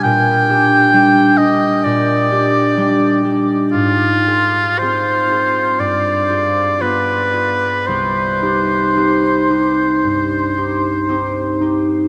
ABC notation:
X:1
M:4/4
L:1/8
Q:1/4=58
K:Cm
V:1 name="Oboe"
g3 e d3 z | F2 c2 d2 =B2 | c6- c z |]
V:2 name="Harp"
[B,,G,DG] [DG] [G,DG] [DG] B,, [DG] [G,DG] [DG] | A,, [FA] [CFA] [FA] G,, [FA] [=B,FA] [FA] | C,, [EG] [CEG] [EG] G,, [EG] [CEG] [EG] |]